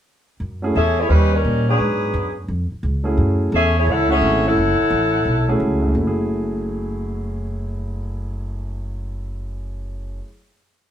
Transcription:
0.40 0.73 F#2 medium
0.62 0.73 F#3 medium
0.62 0.74 A3 medium
0.62 0.73 C#4 soft
0.62 0.74 E4 medium
0.62 0.74 G#4 medium
0.75 1.09 E2 medium
0.75 0.96 C#4 medium
0.75 0.96 G#4 medium
0.75 0.96 A4 medium
0.75 0.96 E5 medium
0.99 1.07 A3 medium
0.99 1.07 E4 medium
0.99 1.07 G#4 medium
0.99 1.07 C#5 medium
1.07 1.43 D#2 medium
1.07 1.31 G3 medium
1.07 1.30 C#4 medium
1.07 1.32 D#4 medium
1.07 1.10 A#4 medium
1.07 1.32 B4 medium
1.32 1.67 G3 medium
1.32 1.66 C#4 medium
1.32 1.67 D#4 medium
1.32 1.67 A#4 medium
1.45 1.78 A#2 medium
1.68 2.33 F#3 medium
1.68 2.33 B3 medium
1.68 2.33 D4 medium
1.68 2.33 G#4 medium
1.79 2.12 G#2 medium
2.14 2.47 F#2 medium
2.48 2.69 F2 medium
2.72 muted upright bass stroke soft
2.83 3.16 C#2 medium
3.04 3.49 F#3 medium
3.04 3.49 A3 soft
3.04 3.49 C#4 medium
3.04 3.49 E4 medium
3.04 3.50 G#4 medium
3.17 3.51 F#2 medium
3.52 3.86 E2 medium
3.52 3.74 C#4 medium
3.52 3.74 G#4 medium
3.52 3.74 A4 medium
3.52 3.74 E5 medium
3.78 3.88 A3 medium
3.78 3.88 E4 medium
3.78 3.88 G#4 medium
3.78 3.88 C#5 medium
3.87 4.20 C#2 medium
3.87 4.11 E4 medium
3.87 4.10 A4 medium
3.87 4.11 C#5 medium
3.87 4.11 F#5 medium
4.08 4.53 F#3 medium
4.08 4.53 A3 medium
4.08 4.53 C#4 medium
4.08 4.43 C#4 medium
4.08 4.54 E4 medium
4.08 4.54 F#4 medium
4.08 4.43 G#4 medium
4.08 4.43 A4 medium
4.08 4.42 E5 medium
4.21 4.55 G#1 medium
4.47 5.57 E4 medium
4.47 5.57 A4 medium
4.47 5.58 C#5 medium
4.47 5.57 F#5 medium
4.57 4.77 F#1 medium
4.80 muted upright bass stroke soft
4.90 5.24 A1 medium
5.25 5.59 B1 medium
5.48 5.87 F#3 medium
5.48 5.92 A3 medium
5.48 5.93 C#4 medium
5.48 5.93 E4 medium
5.48 5.93 G#4 medium
5.60 5.93 C#2 medium
5.82 10.16 F#2 medium
5.89 10.20 F#3 medium
5.95 10.19 F#1 medium
5.95 10.23 A3 medium
6.01 10.26 E4 soft
6.07 10.29 G#4 medium

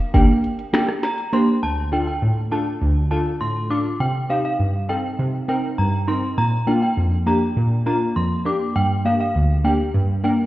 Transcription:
0.14 0.28 G1 medium
0.14 0.26 A#3 medium
0.14 0.26 D4 medium
0.14 0.26 G4 medium
0.14 0.26 A#4 medium
0.14 0.26 G5 medium
0.14 closed hi-hat medium
0.44 closed hi-hat medium
0.59 closed hi-hat soft
0.73 0.85 A#3 medium
0.73 0.85 D4 medium
0.73 0.86 G4 medium
0.73 0.86 A4 medium
0.73 0.85 G5 medium
0.73 finger snap medium
0.73 snare loud
0.73 closed hi-hat medium
0.89 cross-stick loud
1.03 1.15 A#5 medium
1.03 snare medium
1.03 closed hi-hat medium
1.18 closed hi-hat medium
1.33 1.45 A#3 medium
1.33 1.45 D4 medium
1.33 1.45 G4 medium
1.33 1.45 C5 medium
1.33 1.45 C6 medium
1.33 closed hi-hat medium
1.63 2.07 D2 medium
1.63 1.74 A5 loud
1.92 2.04 D4 medium
1.92 2.04 F4 medium
1.92 2.04 A4 medium
1.92 2.04 G5 medium
2.07 2.19 G5 medium
2.22 2.66 A2 medium
2.51 2.63 D4 medium
2.51 2.64 F4 medium
2.51 2.64 A4 medium
2.51 2.63 A5 medium
2.82 3.26 D2 medium
3.11 3.23 D4 medium
3.11 3.23 F4 medium
3.11 3.23 A4 medium
3.11 3.23 A5 medium
3.41 3.85 A2 medium
3.41 3.52 C6 medium
3.70 3.82 D4 medium
3.70 3.82 F4 medium
3.70 3.83 A4 medium
3.70 3.82 D6 medium
4.00 4.44 C3 medium
4.00 4.12 G5 medium
4.29 4.42 C4 medium
4.29 4.42 D#4 medium
4.29 4.42 G4 medium
4.29 4.42 F5 medium
4.45 4.56 F5 medium
4.59 5.04 G2 medium
4.89 5.01 C4 medium
4.89 5.01 D#4 medium
4.89 5.01 A4 medium
4.89 5.01 G5 medium
5.19 5.63 C3 medium
5.48 5.60 C4 medium
5.48 5.61 D#4 medium
5.48 5.61 A#4 medium
5.48 5.60 G5 medium
5.78 6.23 G2 medium
5.78 5.90 A#5 medium
6.07 6.20 C4 medium
6.07 6.20 D#4 medium
6.07 6.20 A#4 medium
6.07 6.20 C6 medium
6.38 6.82 A#2 medium
6.38 6.49 A#5 loud
6.67 6.79 A#3 medium
6.67 6.79 D4 medium
6.67 6.80 F4 medium
6.67 6.79 G5 medium
6.82 6.94 G5 medium
6.97 7.41 F2 medium
7.26 7.39 A#3 medium
7.26 7.39 D4 medium
7.26 7.39 G4 medium
7.26 7.38 A#5 medium
7.57 8.01 A#2 medium
7.86 7.98 A#3 medium
7.86 7.98 D4 medium
7.86 7.98 F4 medium
7.86 7.98 A#5 medium
8.16 8.60 F2 medium
8.16 8.28 C6 medium
8.45 8.57 A#3 medium
8.45 8.58 D4 medium
8.45 8.58 G4 medium
8.45 8.58 D6 medium
8.76 9.20 G2 medium
8.76 8.87 G5 medium
9.05 9.17 A#3 medium
9.05 9.17 D4 medium
9.05 9.17 G4 medium
9.05 9.17 F5 medium
9.21 9.32 F5 medium
9.35 9.79 D2 medium
9.64 9.76 A#3 medium
9.64 9.77 D4 medium
9.64 9.77 G4 medium
9.64 9.76 G5 medium
9.94 10.39 G2 medium
10.24 10.36 A#3 medium
10.24 10.36 D4 medium
10.24 10.36 A#4 medium
10.24 10.36 G5 medium

